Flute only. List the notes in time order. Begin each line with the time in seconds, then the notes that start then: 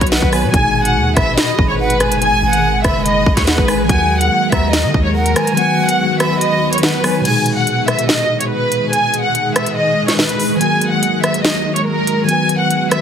0.12 F#5
0.33 G#5
0.53 G#5
1.17 B5
1.80 F#5
2.01 G#5
2.22 G#5
2.85 B5
3.47 F#5
3.68 G#5
3.89 F#5
4.52 A#5
5.15 F#5
5.36 G#5
5.57 F#5
6.20 B5
6.83 F#5
7.04 G#5